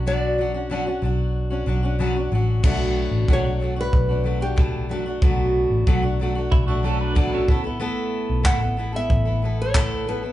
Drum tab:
CC |--------|x-------|--------|--------|
CP |--------|--------|--------|--x---x-|
BD |--------|o-o-o-o-|o-o-o-oo|--o-o-o-|